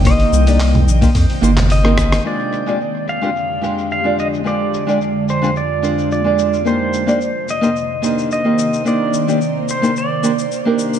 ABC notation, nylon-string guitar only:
X:1
M:4/4
L:1/16
Q:"Swing 16ths" 1/4=109
K:Fdor
V:1 name="Nylon-string guitar"
[B,CEGc]3 [B,DEGd] z3 [B,DEGc] z2 [B,DEGc] z2 [B,CEGB]3 | [A,DFGc]3 [A,DFGd] z3 [A,DFGc] z2 [A,DFGc]3 [A,DFGd]3 | [A,DFGc]3 [A,DFGd] z3 [A,DFGc] z2 [A,DFGc]3 [A,DFGd]3 | [B,DEGc]3 [B,DEGd] z3 [B,DEGc] z2 [B,DEGc]3 [B,CEGe]3 |
[B,DEGc]3 [B,DEGd] z3 [B,DEGc] z2 [B,DEGc] z2 [B,DEGB]3 |]